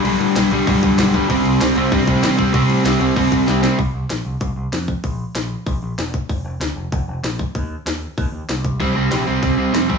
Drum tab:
CC |xxxxxxxx|xxxxxxxx|xxxxxx--|--------|
HH |--------|--------|--------|o-o-o-o-|
SD |--o---o-|--o---o-|--o---oo|--o---o-|
BD |----oo-o|o---oo-o|o---oo--|o---o--o|

CC |--------|--------|--------|--------|
HH |o-o-o-o-|o-o-o-o-|o-o-o-o-|o-o-o-o-|
SD |--o---o-|--o---o-|--o---o-|--o---o-|
BD |o---o--o|o---o--o|o---o--o|o---o--o|